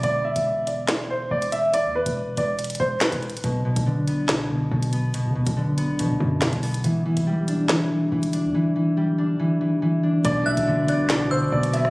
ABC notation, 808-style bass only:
X:1
M:4/4
L:1/16
Q:1/4=141
K:Bphr
V:1 name="808-style bass" clef=bass
E,,,3 E,,,8- E,,, E,,,4- | E,,, E,,2 E,,,3 E,,,4 E,,,3 E,,,2 D,,, | B,,,3 B,,,4 C,,4- C,, B,,,4- | B,,, D, B,,, B,,,4- B,,, F, B,,, F,,3 B,,,3 |
E,,,3 E,,,8- E,,, E,,,3 E,, | z16 | B,,,3 B,,,4 C,,4- C,, B,,,4 |]